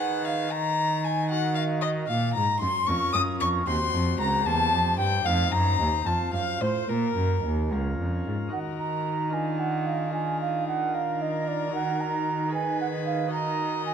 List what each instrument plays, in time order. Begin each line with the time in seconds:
Already playing: pipe organ D#3 D#4 G#4 B4, cello D#3, violin F#5
0.00 flute F#5
0.25 violin F5, flute F5
0.51 violin A#5, flute A#5
1.04 violin G#5, flute G#5
1.29 pipe organ D#4 F#4 A#4, violin F#5, flute F#5
1.55 violin F5, flute F5
1.81 violin D#5, flute D#5
2.08 pipe organ A#2, cello A#2, violin F5, flute F5
2.34 pipe organ G#2, cello G#2, violin A#5, flute A#5
2.60 pipe organ F#2, cello F#2, violin C6, flute C6
2.87 pipe organ F2 C#4 F4 A#4, cello F2, violin C#6, flute C#6
3.13 pipe organ F#2, cello F#2, violin D#6, flute D#6
3.40 pipe organ F2, cello F2, flute C#6, violin C#6
3.66 pipe organ D#2 C4 F#4 C5, cello D#2, flute C6, violin C6
3.92 pipe organ F2, cello F2
4.19 pipe organ C#2, cello C#2, flute A#5, violin A#5
4.45 pipe organ E2 A#3 G4 C5, cello E2, flute A5, violin A5
4.71 pipe organ F2, cello F2
4.97 pipe organ G2, cello G2, flute G5, violin G5
5.24 pipe organ F2 A3 D#4 C5, cello F2, flute F5, violin F5
5.51 pipe organ F#2, cello F#2, flute A#5, violin A#5
5.78 pipe organ D#2, cello D#2
6.04 pipe organ F2 C4 F4 C5, cello F2, flute A5, violin A5
6.32 pipe organ F#2, cello F#2, flute F5, violin F5
6.60 pipe organ A2, cello A2, violin C5, flute C5
6.87 pipe organ A#2, cello A#2, flute A#4, violin A#4
7.15 pipe organ F#2, cello F#2
7.43 pipe organ D#2, cello D#2
7.71 pipe organ C#2 C#4 F4 A#4, cello C#2
7.98 pipe organ F2, cello F2
8.25 pipe organ G#2, cello G#2
8.48 pipe organ D#4 F#4 A#4, violin A#4
8.53 pipe organ D#3, cello D#3, flute F#5
8.79 flute A#5
9.29 pipe organ D4 F4 A#4
9.34 violin G#4, flute G#5
9.59 flute F#5
9.87 flute F5
10.09 pipe organ D4 F4 A#4
10.14 flute G#5
10.41 flute F5
10.68 flute F#5
10.94 violin A#4, flute F5
11.22 flute D#5
11.48 flute D5
11.69 pipe organ D#4 F#4 A#4
11.73 pipe organ D#3, cello D#3, flute F#5
12.01 flute A#5
12.48 pipe organ D#4 G#4 B4, violin B4
12.54 flute G#5
12.81 flute F#5
13.06 flute F5
13.27 pipe organ D#4 F#4 A#4
13.31 violin D#5, flute A#5
13.86 flute G#5